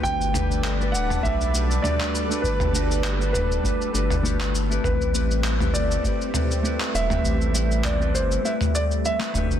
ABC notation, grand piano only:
X:1
M:4/4
L:1/16
Q:"Swing 16ths" 1/4=100
K:G
V:1 name="Grand piano"
g6 f2 e4 d4 | B6 B8 z2 | B6 d8 e2- | e4 d2 c2 e2 d2 e3 z |]